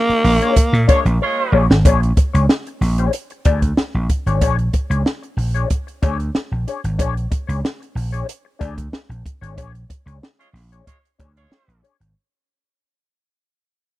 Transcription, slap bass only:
0.09 muted slap bass stroke medium
0.24 0.38 A#1 loud
0.56 muted slap bass stroke soft
0.73 0.85 A#2 loud
1.05 1.18 A#1 loud
1.52 1.66 A#1 loud
1.70 1.82 G#1 medium
1.85 2.11 A#1 loud
2.34 2.46 C#2 medium
2.81 3.07 A#1 medium
3.45 3.72 D2 medium
3.94 4.07 A#1 medium
4.26 4.42 G#1 medium
4.42 4.68 A#1 loud
4.90 5.03 C#2 medium
5.37 5.64 A#1 loud
6.03 6.29 D2 medium
6.52 6.64 A#1 medium
6.84 6.99 G#1 medium
6.99 7.25 A#1 loud
7.49 7.61 C#2 medium
7.95 8.22 A#1 medium
8.61 8.87 D2 medium
9.09 9.22 A#1 medium
9.42 9.58 G#1 medium
9.58 9.84 A#1 loud
10.06 10.19 C#2 medium
10.53 10.80 A#1 medium
11.20 11.45 D2 medium
11.68 11.80 A#1 medium
12.00 12.13 G#1 medium

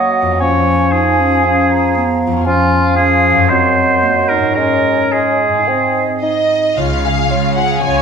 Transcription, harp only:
0.00 0.34 F#2 soft
0.00 0.36 F#3 soft
0.00 0.30 C#4 soft
0.00 0.41 A#4 soft
0.22 2.26 F2 soft
0.26 2.41 B3 soft
0.31 2.30 C#4 soft
0.36 2.40 G#4 soft
2.27 3.42 F2 soft
2.32 3.34 C#4 soft
2.36 3.38 F4 soft
2.41 3.49 G#4 soft
3.30 4.50 F#2 soft
3.35 4.41 C#4 soft
3.39 4.46 F4 soft
3.44 4.57 A#4 soft
4.38 5.48 G#2 soft
4.43 5.63 C#4 soft
4.47 5.66 F4 soft
4.51 5.61 G#4 soft
5.49 6.70 G#2 soft
5.54 6.72 C4 soft
5.58 6.74 D#4 soft
5.62 7.29 G#4 soft
6.77 8.02 C#3 soft
7.03 8.02 C#4 soft
7.30 8.02 G#4 soft
7.57 8.02 F4 soft
7.83 8.02 G#3 soft

